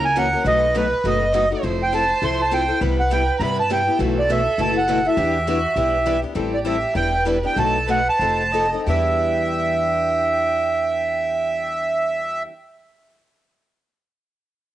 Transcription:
Already playing: upright bass C#2, violin A#4
0.05 accordion G#5
0.16 steel-string acoustic guitar C#3 E3 F#3 A#3 C#4 E4 F#4 A#4, accordion F#5
0.33 steel-string acoustic guitar A#3 C#4 F#4
0.43 upright bass B1, steel-string acoustic guitar B2 F#3 A3 D#4 F#4 B4, violin B4, accordion D#5
0.75 steel-string acoustic guitar B2 F#3 A3 D#4 F#4 B4, accordion B4
1.04 upright bass F#1, steel-string acoustic guitar B2 F#3 A3 D#4 F#4 B4, accordion D#5
1.33 steel-string acoustic guitar B2 F#3 A3 D#4 F#4 B4, violin D#5
1.51 steel-string acoustic guitar A3 D#4 F#4
1.63 upright bass F1, steel-string acoustic guitar F3 C4 E4 A4, violin C5
1.83 accordion G5
1.92 steel-string acoustic guitar F3 C4 E4 A4, accordion A5
2.22 upright bass C2, steel-string acoustic guitar F3 C4 E4 A4, accordion C6
2.42 accordion A5
2.51 steel-string acoustic guitar F3 C4 E4 A4, accordion G5
2.68 steel-string acoustic guitar C4 E4 A4
2.81 upright bass C2, steel-string acoustic guitar C3 G3 B3 E4 G4, violin B4
3.00 accordion F#5
3.11 steel-string acoustic guitar C3 G3 B3 E4 G4, accordion G5
3.39 upright bass G2, steel-string acoustic guitar C3 G3 B3 E4 G4, accordion A#5
3.43 accordion B5
3.60 accordion A5
3.70 steel-string acoustic guitar C3 G3 B3 E4 G4, accordion G5
3.87 steel-string acoustic guitar B3 E4 G4
3.98 upright bass B1, steel-string acoustic guitar B2 E3 A3 E4 F#4 B4, violin A4
4.19 accordion D5
4.29 steel-string acoustic guitar B2 E3 A3 E4 F#4 B4, accordion E5
4.58 upright bass F#1, steel-string acoustic guitar B2 E3 A3 E4 F#4 B4, accordion A5
4.77 accordion F#5
4.88 steel-string acoustic guitar B2 E3 A3 E4 F#4 B4
5.05 steel-string acoustic guitar A3 E4 F#4, accordion E5
5.17 upright bass E2, steel-string acoustic guitar E3 G3 B3 D4 E4 G4 B4, violin G4
5.47 steel-string acoustic guitar E3 G3 B3 D4 E4 G4 B4, violin F#4
5.76 upright bass B1, steel-string acoustic guitar E3 G3 B3 D4 E4 G4 B4, violin G4
6.06 steel-string acoustic guitar E3 G3 B3 D4 E4 G4 B4
6.22 steel-string acoustic guitar B3 D4 G4
6.34 upright bass A1, steel-string acoustic guitar E3 G3 C4 E4 A4, violin G4
6.54 accordion D5
6.65 steel-string acoustic guitar E3 G3 C4 E4 A4, accordion E5
6.94 upright bass E1, steel-string acoustic guitar E3 G3 B3 D4 E4 G4 B4, violin B4, accordion G5
7.25 steel-string acoustic guitar E3 G3 B3 D4 E4 G4 B4
7.43 steel-string acoustic guitar B3 D4 G4, accordion G5
7.55 upright bass B1, steel-string acoustic guitar B2 F#3 A3 D#4 F#4 B4, violin A4, accordion A5
7.87 steel-string acoustic guitar B2 F#3 A3 D#4 F#4 B4, violin B4, accordion F#5
8.09 accordion A5
8.18 upright bass F1, steel-string acoustic guitar F3 C4 D#4 A4, violin C5
8.52 steel-string acoustic guitar F3 C4 D#4 A4, violin D#5
8.73 steel-string acoustic guitar C4 D#4 A4
8.87 upright bass E2, steel-string acoustic guitar E3 G3 B3 D4 E4 G4 B4, accordion E5, violin G5

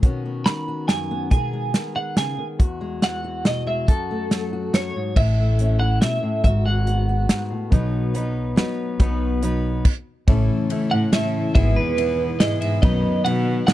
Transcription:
0.02 steel-string acoustic guitar B2 D#3 B3 C#4 F#4, kick, closed hi-hat
0.25 steel-string acoustic guitar B3
0.46 steel-string acoustic guitar D#3, clean electric guitar B5, snare, closed hi-hat
0.68 steel-string acoustic guitar F#4
0.88 steel-string acoustic guitar F#2, clean electric guitar G#5, snare, closed hi-hat
1.11 steel-string acoustic guitar B3
1.31 steel-string acoustic guitar B2 D#3 G#3 B3 G#4, clean electric guitar G#5, kick, closed hi-hat
1.53 steel-string acoustic guitar G#3
1.74 steel-string acoustic guitar D#3, snare, closed hi-hat
1.96 steel-string acoustic guitar G#4, clean electric guitar F#5
2.17 steel-string acoustic guitar C#3, clean electric guitar G#5, snare, closed hi-hat
2.38 steel-string acoustic guitar D#3
2.59 steel-string acoustic guitar E2 F#4, kick, closed hi-hat
2.81 steel-string acoustic guitar G#3
3.02 steel-string acoustic guitar E3, clean electric guitar F#5, snare, closed hi-hat
3.24 steel-string acoustic guitar F#4
3.45 steel-string acoustic guitar B2, clean electric guitar D#5, snare, closed hi-hat
3.67 steel-string acoustic guitar G#3, clean electric guitar E5
3.88 steel-string acoustic guitar F#2 F#4, clean electric guitar A4, kick, closed hi-hat
4.11 steel-string acoustic guitar A3
4.31 steel-string acoustic guitar F#3, snare, closed hi-hat
4.53 steel-string acoustic guitar F#4
4.74 steel-string acoustic guitar F#2, clean electric guitar C#5, snare, closed hi-hat
4.96 steel-string acoustic guitar G#2
5.16 upright bass A1, steel-string acoustic guitar A2 E4, clean electric guitar E5, kick, crash
5.40 steel-string acoustic guitar A3
5.59 steel-string acoustic guitar C#4, closed hi-hat
5.80 steel-string acoustic guitar E4, clean electric guitar F#5
6.01 steel-string acoustic guitar B2, clean electric guitar E5, snare, closed hi-hat
6.23 steel-string acoustic guitar A2
6.44 upright bass G#1, steel-string acoustic guitar G#2 F#4, clean electric guitar E5, kick, closed hi-hat
6.66 steel-string acoustic guitar G#3, clean electric guitar F#5
6.87 steel-string acoustic guitar B3, closed hi-hat
7.09 steel-string acoustic guitar F#4
7.29 steel-string acoustic guitar G#2, snare, closed hi-hat
7.50 steel-string acoustic guitar A2
7.70 upright piano B1 B2 B3 D#4 F#4 D#5, upright bass B1, steel-string acoustic guitar B2 F#3 B3 D#4 B4, kick, closed hi-hat
8.14 steel-string acoustic guitar F#3 B3 D#4 B4, upright piano B3 D#4 F#4 D#5, closed hi-hat
8.56 steel-string acoustic guitar F#3 B3 D#4 B4, upright piano B3 D#4 F#4 D#5, snare, closed hi-hat
8.99 upright bass B1, upright piano B1 B2 B3 D#4 F#4 D#5, steel-string acoustic guitar B2 F#3 B3 D#4 B4, kick, closed hi-hat
9.41 steel-string acoustic guitar F#3 B3 D#4 B4, upright piano B3 D#4 F#4 D#5, closed hi-hat
9.85 kick, crash
10.27 upright piano A1 A2 C#4 E4 A4 E5, upright bass A1, steel-string acoustic guitar A2 E3 A3 C#4 E4 A4, tonewheel organ C#3 E3 A3 E4, kick, ride
10.70 steel-string acoustic guitar A3 C#4 E4 A4, upright piano C#4 E4 A4 E5, ride
10.91 cello A2, clean electric guitar F#5
11.12 cello A2, steel-string acoustic guitar A3 C#4 E4 A4, upright piano C#4 E4 A4 E5, clean electric guitar E5, snare, ride
11.55 upright bass G#1, upright piano G#1 G#2 B3 E4 G#4 E5, cello G#2, tonewheel organ B2 G#3, steel-string acoustic guitar G#3 B3 E4 G#4, clean electric guitar E5, kick, ride
11.76 cello E2, clean electric guitar B4
11.97 steel-string acoustic guitar G#3 B3 E4 G#4, upright piano B3 E4 G#4 E5, ride
12.40 cello G#2, steel-string acoustic guitar G#3 B3 E4 G#4, upright piano B3 E4 G#4 E5, clean electric guitar D#5, snare, ride
12.61 cello G#2, clean electric guitar E5, ride
12.82 upright piano B1 B2 B3 D#4 F#4 D#5, upright bass B1, cello F#2, steel-string acoustic guitar B2 F#3 B3 D#4 B4, tonewheel organ D#3 F#3 B3 F#4, clean electric guitar D#5, kick, ride
13.24 cello B2, steel-string acoustic guitar F#3 B3 D#4 B4, upright piano B3 D#4 F#4 D#5, clean electric guitar F#5, ride
13.67 cello B2, steel-string acoustic guitar F#3 B3 D#4 B4, upright piano B3 D#4 F#4 D#5, clean electric guitar F#5, snare, ride

